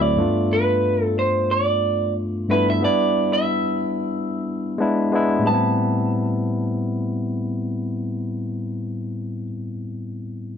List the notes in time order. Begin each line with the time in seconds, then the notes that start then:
Already playing: D2 F#3 A3 C4 E4
0.01 D5
0.17 G2 A3 B3 D4 F4
0.53 B4
1.04 A4
1.19 C5
1.51 D5
2.49 G2 A3 B3 D4 E4 B4
2.70 E5
2.81 G3 B3 D4 D5
2.85 E4
3.33 E5
4.78 G#3 B3 D4 E4
5.12 G#3 B3 D4 E4
5.39 A2 G3
5.47 B3 C4 A5
5.54 E4